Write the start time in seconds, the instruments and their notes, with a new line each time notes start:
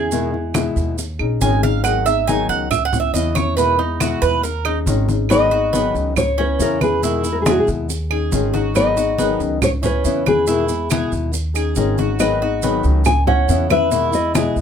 Already playing: upright bass E2, nylon-string guitar B3 C#4 E4, cuban tres G#4
0.11 nylon-string guitar B2 D#3 G#3 B3 E4, maracas
0.32 nylon-string guitar B3 E4, high conga
0.54 nylon-string guitar B2 G#3 B3 E4, high conga, claves, maracas
0.76 upright bass D#2, high conga, maracas
0.98 muted nylon-string guitar stroke, high conga, maracas
1.19 upright bass A#1, nylon-string guitar C#4 D#4 G#4, high conga, claves
1.41 upright bass G#1, nylon-string guitar D#3 G#3 C#4 D#4 G#4, cuban tres G#5, high conga, maracas
1.63 nylon-string guitar C#4 D#4 G#4, cuban tres F5, high conga, maracas
1.84 nylon-string guitar D#3 F#3 B3 D#4 G#4, cuban tres F#5, claves, maracas
2.06 nylon-string guitar B3 D#4 G#4, cuban tres E5, high conga, maracas
2.27 nylon-string guitar D#3 F#3 B3 D#4 G#4, cuban tres G#5, high conga, maracas
2.49 upright bass C#2, cuban tres F#5, high conga, maracas
2.71 cuban tres E5, muted nylon-string guitar stroke, high conga, low conga, claves, maracas
2.85 cuban tres F#5
2.92 nylon-string guitar B3 C#4 E4, high conga, low conga, maracas
3.00 cuban tres E5
3.14 upright bass E2, nylon-string guitar C#3 E3 B3 C#4 E4, cuban tres D#5, high conga, maracas
3.35 nylon-string guitar B3 C#4 E4, cuban tres C#5, high conga, claves, maracas
3.57 nylon-string guitar B2 D#3 G#3 B3 E4, cuban tres B4, high conga, maracas
3.78 nylon-string guitar G#3 B3 E4, cuban tres D#4, high conga
4.00 nylon-string guitar B2 G#3 B3 E4, cuban tres F#4, high conga, claves, maracas
4.22 upright bass D#2, cuban tres B4, high conga, maracas
4.43 cuban tres A#4, muted nylon-string guitar stroke, high conga, maracas
4.65 nylon-string guitar C#4 D#4 G#4, cuban tres D#4, high conga, claves
4.86 upright bass G#1, nylon-string guitar D#3 G#3 C#4 D#4 G#4, high conga, maracas
5.08 nylon-string guitar C#4 D#4 G#4, high conga, maracas
5.29 nylon-string guitar D#3 F#3 B3 D#4 G#4 D#5, cuban tres B3, claves, maracas
5.51 nylon-string guitar B3 D#4 G#4, cuban tres F#4, high conga
5.73 nylon-string guitar D#3 F#3 B3 D#4 G#4, cuban tres B3, high conga, maracas
5.94 upright bass C#2, high conga, maracas
6.16 nylon-string guitar C#5, muted nylon-string guitar stroke, high conga, low conga, claves, maracas
6.38 nylon-string guitar B3 C#4 E4 B4, cuban tres C#4, high conga
6.59 upright bass E2, nylon-string guitar C#3 E3 B3 C#4 E4 A#4, high conga, maracas
6.81 nylon-string guitar B3 C#4 E4 G#4, cuban tres B4, high conga, claves, maracas
7.02 nylon-string guitar B2 D#3 G#3 B3 E4, cuban tres E4, high conga, maracas
7.24 nylon-string guitar G#3 B3 E4, high conga, maracas
7.32 nylon-string guitar A#4
7.42 nylon-string guitar B2 G#4
7.46 nylon-string guitar G#3 B3 E4, cuban tres G#4, high conga, claves, maracas
7.50 nylon-string guitar F#4
7.59 nylon-string guitar G#4
7.68 upright bass D#2, high conga, maracas
7.89 muted nylon-string guitar stroke, high conga, maracas
8.10 nylon-string guitar C#4 D#4 G#4, cuban tres G#4, high conga, claves
8.32 upright bass G#1, nylon-string guitar D#3 G#3 C#4 D#4 G#4, high conga, maracas
8.54 nylon-string guitar C#4 D#4 G#4, cuban tres F#4, high conga, maracas
8.75 nylon-string guitar D#3 F#3 B3 D#4 G#4 D#5, cuban tres B3, claves, maracas
8.96 nylon-string guitar B3 D#4 G#4, cuban tres F#4, high conga, maracas
9.18 nylon-string guitar D#3 F#3 B3 D#4 G#4, cuban tres B3, high conga, maracas
9.40 upright bass C#2, high conga, maracas
9.61 nylon-string guitar C#5, muted nylon-string guitar stroke, high conga, low conga, claves, maracas
9.82 nylon-string guitar B3 C#4 E4 B4, cuban tres C#4, high conga, low conga, maracas
10.03 upright bass E2, nylon-string guitar C#3 E3 B3 C#4 E4, high conga, maracas
10.25 nylon-string guitar B3 C#4 E4 G#4, cuban tres B4, high conga, claves, maracas
10.47 nylon-string guitar B2 D#3 G#3 B3 E4, cuban tres E4, maracas
10.68 nylon-string guitar G#3 B3, high conga, maracas
10.90 nylon-string guitar B2 G#3 B3 E4, cuban tres G#4, high conga, claves, maracas
11.12 upright bass D#2, high conga, maracas
11.33 muted nylon-string guitar stroke, high conga, maracas
11.54 nylon-string guitar C#4 D#4 G#4, cuban tres G#4, high conga, claves, maracas
11.75 upright bass G#1, nylon-string guitar D#3 G#3 C#4 D#4 G#4, high conga, maracas
11.97 nylon-string guitar C#4 D#4 G#4, cuban tres F#4, high conga, maracas
12.19 nylon-string guitar D#3 F#3 B3 D#4 G#4 D#5, cuban tres B3, claves, maracas
12.41 nylon-string guitar B3 D#4 G#4, cuban tres F#4, high conga
12.62 nylon-string guitar D#3 F#3 B3 D#4 G#4, cuban tres B3, high conga, maracas
12.83 upright bass C#2, high conga, maracas
13.05 nylon-string guitar G#5, muted nylon-string guitar stroke, high conga, low conga, claves, maracas
13.26 nylon-string guitar B3 C#4 E4 F#5, cuban tres C#4, high conga, low conga
13.48 upright bass E2, nylon-string guitar C#3 E3 B3 C#4 E4, high conga, maracas
13.69 nylon-string guitar B3 C#4 E4 E5, cuban tres B4, high conga, claves, maracas
13.90 nylon-string guitar B2 D#3 G#3 B3 E4, cuban tres E4, high conga, maracas
14.12 nylon-string guitar G#3 B3 E4 D#5, high conga, maracas
14.33 nylon-string guitar B2 G#3 B3 E4, cuban tres G#4, high conga, claves, maracas
14.56 upright bass D#2, high conga, maracas